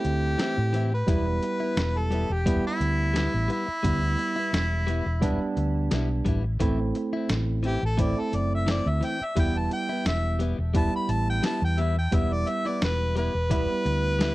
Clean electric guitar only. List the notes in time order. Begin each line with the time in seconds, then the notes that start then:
0.05 muted clean electric guitar stroke
0.38 E3 C4 E4
0.58 muted clean electric guitar stroke
0.73 E3 C4 E4
0.92 muted clean electric guitar stroke
1.08 G3 B3 E4
1.27 muted clean electric guitar stroke
1.43 muted clean electric guitar stroke
1.60 B3 E4
1.77 muted clean electric guitar stroke
2.11 G3 B3 E4
2.46 G3 B3 E4
2.65 muted clean electric guitar stroke
2.80 muted clean electric guitar stroke
3.14 G3 B3 E4
3.33 muted clean electric guitar stroke
3.48 G3 B3 E4
3.67 muted clean electric guitar stroke
3.83 G3 B3 E4
4.02 muted clean electric guitar stroke
4.18 muted clean electric guitar stroke
4.36 B3 E4
4.52 muted clean electric guitar stroke
4.87 G3 B3 E4
5.22 G3 B3 E4
5.41 muted clean electric guitar stroke
5.57 muted clean electric guitar stroke
5.91 G3 B3 E4
6.10 muted clean electric guitar stroke
6.25 G3 B3 E4
6.44 muted clean electric guitar stroke
6.60 E3 C4 E4
6.80 muted clean electric guitar stroke
6.95 muted clean electric guitar stroke
7.13 C4 E4
7.29 muted clean electric guitar stroke
7.63 E3 C4 E4
7.82 muted clean electric guitar stroke
7.98 E3 C4 E4
8.16 muted clean electric guitar stroke
8.32 muted clean electric guitar stroke
8.66 E3 C4 E4
8.85 muted clean electric guitar stroke
9.01 E3 C4 E4
9.20 muted clean electric guitar stroke
9.36 G3 B3 E4
9.55 muted clean electric guitar stroke
9.71 muted clean electric guitar stroke
9.89 B3 E4
10.05 muted clean electric guitar stroke
10.39 G3 B3 E4
10.58 muted clean electric guitar stroke
10.74 G3 B3 E4
10.93 muted clean electric guitar stroke
11.08 muted clean electric guitar stroke
11.43 G3 B3 E4
11.62 muted clean electric guitar stroke
11.78 G3 B3 E4
11.97 muted clean electric guitar stroke
12.13 G3 B3 E4
12.32 muted clean electric guitar stroke
12.47 muted clean electric guitar stroke
12.65 B3 E4
13.16 G3 B3 E4
13.34 muted clean electric guitar stroke
13.50 G3 B3 E4
13.69 muted clean electric guitar stroke
13.85 muted clean electric guitar stroke
14.19 G3 B3 E4